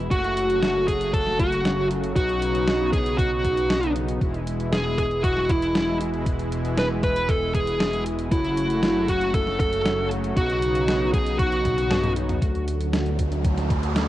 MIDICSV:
0, 0, Header, 1, 6, 480
1, 0, Start_track
1, 0, Key_signature, 4, "major"
1, 0, Tempo, 512821
1, 103, Time_signature, 4, 2, 24, 8
1, 13181, End_track
2, 0, Start_track
2, 0, Title_t, "Lead electric guitar"
2, 0, Program_c, 0, 29
2, 103, Note_on_c, 0, 66, 93
2, 818, Note_off_c, 0, 66, 0
2, 821, Note_on_c, 0, 68, 84
2, 1046, Note_off_c, 0, 68, 0
2, 1062, Note_on_c, 0, 69, 93
2, 1286, Note_off_c, 0, 69, 0
2, 1306, Note_on_c, 0, 66, 80
2, 1751, Note_off_c, 0, 66, 0
2, 2025, Note_on_c, 0, 66, 98
2, 2707, Note_off_c, 0, 66, 0
2, 2738, Note_on_c, 0, 68, 99
2, 2964, Note_off_c, 0, 68, 0
2, 2978, Note_on_c, 0, 66, 87
2, 3663, Note_off_c, 0, 66, 0
2, 4423, Note_on_c, 0, 68, 99
2, 4647, Note_off_c, 0, 68, 0
2, 4667, Note_on_c, 0, 68, 98
2, 4900, Note_off_c, 0, 68, 0
2, 4904, Note_on_c, 0, 66, 96
2, 5142, Note_on_c, 0, 64, 80
2, 5151, Note_off_c, 0, 66, 0
2, 5589, Note_off_c, 0, 64, 0
2, 6353, Note_on_c, 0, 71, 107
2, 6416, Note_off_c, 0, 71, 0
2, 6587, Note_on_c, 0, 71, 100
2, 6827, Note_on_c, 0, 69, 96
2, 6833, Note_off_c, 0, 71, 0
2, 7061, Note_off_c, 0, 69, 0
2, 7065, Note_on_c, 0, 68, 84
2, 7510, Note_off_c, 0, 68, 0
2, 7785, Note_on_c, 0, 64, 87
2, 8509, Note_on_c, 0, 66, 91
2, 8526, Note_off_c, 0, 64, 0
2, 8747, Note_off_c, 0, 66, 0
2, 8750, Note_on_c, 0, 69, 112
2, 8976, Note_off_c, 0, 69, 0
2, 8987, Note_on_c, 0, 69, 96
2, 9432, Note_off_c, 0, 69, 0
2, 9707, Note_on_c, 0, 66, 95
2, 10388, Note_off_c, 0, 66, 0
2, 10422, Note_on_c, 0, 68, 103
2, 10657, Note_off_c, 0, 68, 0
2, 10661, Note_on_c, 0, 66, 92
2, 11345, Note_off_c, 0, 66, 0
2, 13181, End_track
3, 0, Start_track
3, 0, Title_t, "Supersaw synth"
3, 0, Program_c, 1, 81
3, 101, Note_on_c, 1, 49, 80
3, 101, Note_on_c, 1, 54, 72
3, 102, Note_on_c, 1, 57, 72
3, 102, Note_on_c, 1, 66, 90
3, 2004, Note_off_c, 1, 57, 0
3, 2004, Note_off_c, 1, 66, 0
3, 2021, Note_on_c, 1, 63, 88
3, 2024, Note_on_c, 1, 59, 72
3, 3905, Note_off_c, 1, 49, 0
3, 3905, Note_off_c, 1, 54, 0
3, 3923, Note_off_c, 1, 63, 0
3, 3924, Note_off_c, 1, 59, 0
3, 3943, Note_on_c, 1, 64, 89
3, 3944, Note_on_c, 1, 56, 74
3, 3945, Note_on_c, 1, 47, 81
3, 3945, Note_on_c, 1, 52, 73
3, 7746, Note_off_c, 1, 56, 0
3, 7746, Note_off_c, 1, 64, 0
3, 7747, Note_off_c, 1, 47, 0
3, 7747, Note_off_c, 1, 52, 0
3, 7778, Note_on_c, 1, 54, 74
3, 7779, Note_on_c, 1, 49, 81
3, 7779, Note_on_c, 1, 57, 73
3, 7781, Note_on_c, 1, 66, 88
3, 9682, Note_off_c, 1, 57, 0
3, 9683, Note_off_c, 1, 66, 0
3, 9700, Note_on_c, 1, 59, 76
3, 9701, Note_on_c, 1, 63, 85
3, 11583, Note_off_c, 1, 54, 0
3, 11584, Note_off_c, 1, 49, 0
3, 11602, Note_off_c, 1, 59, 0
3, 11603, Note_off_c, 1, 63, 0
3, 11621, Note_on_c, 1, 54, 75
3, 11621, Note_on_c, 1, 57, 74
3, 11622, Note_on_c, 1, 50, 80
3, 11622, Note_on_c, 1, 66, 90
3, 13181, Note_off_c, 1, 50, 0
3, 13181, Note_off_c, 1, 54, 0
3, 13181, Note_off_c, 1, 57, 0
3, 13181, Note_off_c, 1, 66, 0
3, 13181, End_track
4, 0, Start_track
4, 0, Title_t, "Analog synth bass"
4, 0, Program_c, 2, 38
4, 103, Note_on_c, 2, 30, 88
4, 1999, Note_off_c, 2, 30, 0
4, 2022, Note_on_c, 2, 35, 85
4, 3919, Note_off_c, 2, 35, 0
4, 3942, Note_on_c, 2, 28, 86
4, 7759, Note_off_c, 2, 28, 0
4, 7782, Note_on_c, 2, 30, 87
4, 9679, Note_off_c, 2, 30, 0
4, 9702, Note_on_c, 2, 35, 89
4, 11599, Note_off_c, 2, 35, 0
4, 11623, Note_on_c, 2, 38, 87
4, 13181, Note_off_c, 2, 38, 0
4, 13181, End_track
5, 0, Start_track
5, 0, Title_t, "Riser"
5, 0, Program_c, 3, 103
5, 11623, Note_on_c, 3, 60, 77
5, 13181, Note_off_c, 3, 60, 0
5, 13181, End_track
6, 0, Start_track
6, 0, Title_t, "Drums"
6, 103, Note_on_c, 9, 36, 117
6, 105, Note_on_c, 9, 42, 79
6, 196, Note_off_c, 9, 36, 0
6, 199, Note_off_c, 9, 42, 0
6, 227, Note_on_c, 9, 42, 36
6, 320, Note_off_c, 9, 42, 0
6, 345, Note_on_c, 9, 42, 78
6, 439, Note_off_c, 9, 42, 0
6, 465, Note_on_c, 9, 42, 50
6, 559, Note_off_c, 9, 42, 0
6, 585, Note_on_c, 9, 38, 119
6, 585, Note_on_c, 9, 42, 76
6, 679, Note_off_c, 9, 38, 0
6, 679, Note_off_c, 9, 42, 0
6, 822, Note_on_c, 9, 36, 61
6, 825, Note_on_c, 9, 42, 78
6, 916, Note_off_c, 9, 36, 0
6, 918, Note_off_c, 9, 42, 0
6, 945, Note_on_c, 9, 42, 52
6, 1039, Note_off_c, 9, 42, 0
6, 1062, Note_on_c, 9, 36, 118
6, 1064, Note_on_c, 9, 42, 83
6, 1156, Note_off_c, 9, 36, 0
6, 1158, Note_off_c, 9, 42, 0
6, 1185, Note_on_c, 9, 38, 34
6, 1279, Note_off_c, 9, 38, 0
6, 1303, Note_on_c, 9, 36, 107
6, 1306, Note_on_c, 9, 42, 74
6, 1396, Note_off_c, 9, 36, 0
6, 1399, Note_off_c, 9, 42, 0
6, 1426, Note_on_c, 9, 42, 51
6, 1519, Note_off_c, 9, 42, 0
6, 1546, Note_on_c, 9, 38, 125
6, 1546, Note_on_c, 9, 42, 78
6, 1639, Note_off_c, 9, 38, 0
6, 1639, Note_off_c, 9, 42, 0
6, 1786, Note_on_c, 9, 42, 77
6, 1879, Note_off_c, 9, 42, 0
6, 1906, Note_on_c, 9, 42, 49
6, 2000, Note_off_c, 9, 42, 0
6, 2023, Note_on_c, 9, 36, 119
6, 2026, Note_on_c, 9, 42, 76
6, 2116, Note_off_c, 9, 36, 0
6, 2119, Note_off_c, 9, 42, 0
6, 2147, Note_on_c, 9, 42, 35
6, 2240, Note_off_c, 9, 42, 0
6, 2267, Note_on_c, 9, 42, 76
6, 2360, Note_off_c, 9, 42, 0
6, 2387, Note_on_c, 9, 42, 51
6, 2480, Note_off_c, 9, 42, 0
6, 2505, Note_on_c, 9, 38, 112
6, 2505, Note_on_c, 9, 42, 75
6, 2599, Note_off_c, 9, 38, 0
6, 2599, Note_off_c, 9, 42, 0
6, 2743, Note_on_c, 9, 36, 107
6, 2746, Note_on_c, 9, 38, 37
6, 2746, Note_on_c, 9, 42, 74
6, 2836, Note_off_c, 9, 36, 0
6, 2839, Note_off_c, 9, 38, 0
6, 2839, Note_off_c, 9, 42, 0
6, 2866, Note_on_c, 9, 42, 51
6, 2960, Note_off_c, 9, 42, 0
6, 2983, Note_on_c, 9, 36, 114
6, 2986, Note_on_c, 9, 42, 76
6, 3076, Note_off_c, 9, 36, 0
6, 3079, Note_off_c, 9, 42, 0
6, 3223, Note_on_c, 9, 36, 65
6, 3225, Note_on_c, 9, 42, 73
6, 3316, Note_off_c, 9, 36, 0
6, 3319, Note_off_c, 9, 42, 0
6, 3345, Note_on_c, 9, 42, 48
6, 3439, Note_off_c, 9, 42, 0
6, 3464, Note_on_c, 9, 38, 120
6, 3464, Note_on_c, 9, 42, 76
6, 3557, Note_off_c, 9, 38, 0
6, 3557, Note_off_c, 9, 42, 0
6, 3585, Note_on_c, 9, 42, 36
6, 3678, Note_off_c, 9, 42, 0
6, 3705, Note_on_c, 9, 42, 77
6, 3798, Note_off_c, 9, 42, 0
6, 3824, Note_on_c, 9, 42, 49
6, 3917, Note_off_c, 9, 42, 0
6, 3943, Note_on_c, 9, 36, 112
6, 3945, Note_on_c, 9, 42, 73
6, 4036, Note_off_c, 9, 36, 0
6, 4039, Note_off_c, 9, 42, 0
6, 4065, Note_on_c, 9, 42, 33
6, 4159, Note_off_c, 9, 42, 0
6, 4185, Note_on_c, 9, 42, 75
6, 4278, Note_off_c, 9, 42, 0
6, 4305, Note_on_c, 9, 42, 50
6, 4399, Note_off_c, 9, 42, 0
6, 4424, Note_on_c, 9, 38, 114
6, 4424, Note_on_c, 9, 42, 71
6, 4517, Note_off_c, 9, 38, 0
6, 4517, Note_off_c, 9, 42, 0
6, 4663, Note_on_c, 9, 36, 59
6, 4664, Note_on_c, 9, 42, 71
6, 4756, Note_off_c, 9, 36, 0
6, 4758, Note_off_c, 9, 42, 0
6, 4784, Note_on_c, 9, 42, 52
6, 4878, Note_off_c, 9, 42, 0
6, 4902, Note_on_c, 9, 36, 115
6, 4904, Note_on_c, 9, 42, 75
6, 4996, Note_off_c, 9, 36, 0
6, 4998, Note_off_c, 9, 42, 0
6, 5025, Note_on_c, 9, 38, 34
6, 5118, Note_off_c, 9, 38, 0
6, 5143, Note_on_c, 9, 36, 103
6, 5143, Note_on_c, 9, 42, 73
6, 5236, Note_off_c, 9, 36, 0
6, 5237, Note_off_c, 9, 42, 0
6, 5264, Note_on_c, 9, 42, 48
6, 5358, Note_off_c, 9, 42, 0
6, 5385, Note_on_c, 9, 38, 119
6, 5385, Note_on_c, 9, 42, 74
6, 5479, Note_off_c, 9, 38, 0
6, 5479, Note_off_c, 9, 42, 0
6, 5624, Note_on_c, 9, 42, 74
6, 5718, Note_off_c, 9, 42, 0
6, 5746, Note_on_c, 9, 42, 48
6, 5839, Note_off_c, 9, 42, 0
6, 5863, Note_on_c, 9, 36, 111
6, 5864, Note_on_c, 9, 42, 71
6, 5957, Note_off_c, 9, 36, 0
6, 5958, Note_off_c, 9, 42, 0
6, 5986, Note_on_c, 9, 42, 34
6, 6079, Note_off_c, 9, 42, 0
6, 6105, Note_on_c, 9, 42, 71
6, 6199, Note_off_c, 9, 42, 0
6, 6224, Note_on_c, 9, 42, 49
6, 6318, Note_off_c, 9, 42, 0
6, 6343, Note_on_c, 9, 38, 105
6, 6343, Note_on_c, 9, 42, 73
6, 6437, Note_off_c, 9, 38, 0
6, 6437, Note_off_c, 9, 42, 0
6, 6583, Note_on_c, 9, 36, 99
6, 6583, Note_on_c, 9, 38, 34
6, 6583, Note_on_c, 9, 42, 75
6, 6677, Note_off_c, 9, 36, 0
6, 6677, Note_off_c, 9, 38, 0
6, 6677, Note_off_c, 9, 42, 0
6, 6704, Note_on_c, 9, 42, 50
6, 6798, Note_off_c, 9, 42, 0
6, 6822, Note_on_c, 9, 42, 75
6, 6824, Note_on_c, 9, 36, 107
6, 6916, Note_off_c, 9, 42, 0
6, 6917, Note_off_c, 9, 36, 0
6, 7063, Note_on_c, 9, 36, 59
6, 7063, Note_on_c, 9, 42, 72
6, 7157, Note_off_c, 9, 36, 0
6, 7157, Note_off_c, 9, 42, 0
6, 7183, Note_on_c, 9, 42, 47
6, 7276, Note_off_c, 9, 42, 0
6, 7304, Note_on_c, 9, 38, 113
6, 7304, Note_on_c, 9, 42, 77
6, 7397, Note_off_c, 9, 38, 0
6, 7397, Note_off_c, 9, 42, 0
6, 7425, Note_on_c, 9, 42, 33
6, 7519, Note_off_c, 9, 42, 0
6, 7544, Note_on_c, 9, 42, 74
6, 7638, Note_off_c, 9, 42, 0
6, 7663, Note_on_c, 9, 42, 48
6, 7757, Note_off_c, 9, 42, 0
6, 7783, Note_on_c, 9, 36, 112
6, 7783, Note_on_c, 9, 42, 76
6, 7877, Note_off_c, 9, 36, 0
6, 7877, Note_off_c, 9, 42, 0
6, 7904, Note_on_c, 9, 42, 35
6, 7998, Note_off_c, 9, 42, 0
6, 8024, Note_on_c, 9, 42, 74
6, 8118, Note_off_c, 9, 42, 0
6, 8144, Note_on_c, 9, 42, 50
6, 8238, Note_off_c, 9, 42, 0
6, 8263, Note_on_c, 9, 38, 105
6, 8263, Note_on_c, 9, 42, 75
6, 8356, Note_off_c, 9, 38, 0
6, 8356, Note_off_c, 9, 42, 0
6, 8503, Note_on_c, 9, 36, 56
6, 8503, Note_on_c, 9, 42, 77
6, 8597, Note_off_c, 9, 36, 0
6, 8597, Note_off_c, 9, 42, 0
6, 8624, Note_on_c, 9, 42, 51
6, 8717, Note_off_c, 9, 42, 0
6, 8743, Note_on_c, 9, 36, 105
6, 8744, Note_on_c, 9, 42, 75
6, 8836, Note_off_c, 9, 36, 0
6, 8837, Note_off_c, 9, 42, 0
6, 8866, Note_on_c, 9, 38, 33
6, 8959, Note_off_c, 9, 38, 0
6, 8983, Note_on_c, 9, 36, 102
6, 8985, Note_on_c, 9, 42, 74
6, 9077, Note_off_c, 9, 36, 0
6, 9078, Note_off_c, 9, 42, 0
6, 9105, Note_on_c, 9, 42, 49
6, 9199, Note_off_c, 9, 42, 0
6, 9225, Note_on_c, 9, 38, 109
6, 9225, Note_on_c, 9, 42, 76
6, 9319, Note_off_c, 9, 38, 0
6, 9319, Note_off_c, 9, 42, 0
6, 9465, Note_on_c, 9, 42, 76
6, 9558, Note_off_c, 9, 42, 0
6, 9585, Note_on_c, 9, 42, 48
6, 9679, Note_off_c, 9, 42, 0
6, 9703, Note_on_c, 9, 36, 114
6, 9704, Note_on_c, 9, 42, 75
6, 9796, Note_off_c, 9, 36, 0
6, 9797, Note_off_c, 9, 42, 0
6, 9825, Note_on_c, 9, 42, 35
6, 9919, Note_off_c, 9, 42, 0
6, 9944, Note_on_c, 9, 42, 78
6, 10038, Note_off_c, 9, 42, 0
6, 10064, Note_on_c, 9, 42, 54
6, 10158, Note_off_c, 9, 42, 0
6, 10186, Note_on_c, 9, 38, 110
6, 10186, Note_on_c, 9, 42, 75
6, 10279, Note_off_c, 9, 38, 0
6, 10279, Note_off_c, 9, 42, 0
6, 10423, Note_on_c, 9, 36, 103
6, 10425, Note_on_c, 9, 38, 33
6, 10425, Note_on_c, 9, 42, 75
6, 10517, Note_off_c, 9, 36, 0
6, 10518, Note_off_c, 9, 38, 0
6, 10518, Note_off_c, 9, 42, 0
6, 10544, Note_on_c, 9, 42, 52
6, 10638, Note_off_c, 9, 42, 0
6, 10663, Note_on_c, 9, 36, 110
6, 10664, Note_on_c, 9, 42, 78
6, 10757, Note_off_c, 9, 36, 0
6, 10757, Note_off_c, 9, 42, 0
6, 10784, Note_on_c, 9, 42, 34
6, 10878, Note_off_c, 9, 42, 0
6, 10903, Note_on_c, 9, 36, 59
6, 10904, Note_on_c, 9, 42, 76
6, 10904, Note_on_c, 9, 48, 60
6, 10996, Note_off_c, 9, 36, 0
6, 10998, Note_off_c, 9, 42, 0
6, 10998, Note_off_c, 9, 48, 0
6, 11025, Note_on_c, 9, 42, 49
6, 11025, Note_on_c, 9, 48, 58
6, 11119, Note_off_c, 9, 42, 0
6, 11119, Note_off_c, 9, 48, 0
6, 11144, Note_on_c, 9, 38, 116
6, 11144, Note_on_c, 9, 42, 80
6, 11144, Note_on_c, 9, 47, 78
6, 11238, Note_off_c, 9, 38, 0
6, 11238, Note_off_c, 9, 42, 0
6, 11238, Note_off_c, 9, 47, 0
6, 11265, Note_on_c, 9, 42, 37
6, 11265, Note_on_c, 9, 47, 70
6, 11359, Note_off_c, 9, 42, 0
6, 11359, Note_off_c, 9, 47, 0
6, 11385, Note_on_c, 9, 42, 78
6, 11479, Note_off_c, 9, 42, 0
6, 11505, Note_on_c, 9, 42, 51
6, 11505, Note_on_c, 9, 45, 82
6, 11599, Note_off_c, 9, 42, 0
6, 11599, Note_off_c, 9, 45, 0
6, 11623, Note_on_c, 9, 36, 114
6, 11626, Note_on_c, 9, 42, 79
6, 11716, Note_off_c, 9, 36, 0
6, 11720, Note_off_c, 9, 42, 0
6, 11746, Note_on_c, 9, 42, 36
6, 11839, Note_off_c, 9, 42, 0
6, 11864, Note_on_c, 9, 42, 80
6, 11958, Note_off_c, 9, 42, 0
6, 11985, Note_on_c, 9, 42, 54
6, 12078, Note_off_c, 9, 42, 0
6, 12104, Note_on_c, 9, 38, 111
6, 12104, Note_on_c, 9, 42, 78
6, 12198, Note_off_c, 9, 38, 0
6, 12198, Note_off_c, 9, 42, 0
6, 12224, Note_on_c, 9, 42, 37
6, 12318, Note_off_c, 9, 42, 0
6, 12343, Note_on_c, 9, 36, 61
6, 12344, Note_on_c, 9, 42, 82
6, 12436, Note_off_c, 9, 36, 0
6, 12438, Note_off_c, 9, 42, 0
6, 12464, Note_on_c, 9, 42, 55
6, 12558, Note_off_c, 9, 42, 0
6, 12583, Note_on_c, 9, 36, 110
6, 12584, Note_on_c, 9, 42, 82
6, 12677, Note_off_c, 9, 36, 0
6, 12678, Note_off_c, 9, 42, 0
6, 12705, Note_on_c, 9, 38, 33
6, 12705, Note_on_c, 9, 42, 35
6, 12799, Note_off_c, 9, 38, 0
6, 12799, Note_off_c, 9, 42, 0
6, 12823, Note_on_c, 9, 36, 105
6, 12825, Note_on_c, 9, 42, 77
6, 12917, Note_off_c, 9, 36, 0
6, 12918, Note_off_c, 9, 42, 0
6, 12944, Note_on_c, 9, 42, 53
6, 13038, Note_off_c, 9, 42, 0
6, 13064, Note_on_c, 9, 38, 120
6, 13064, Note_on_c, 9, 42, 84
6, 13158, Note_off_c, 9, 38, 0
6, 13158, Note_off_c, 9, 42, 0
6, 13181, End_track
0, 0, End_of_file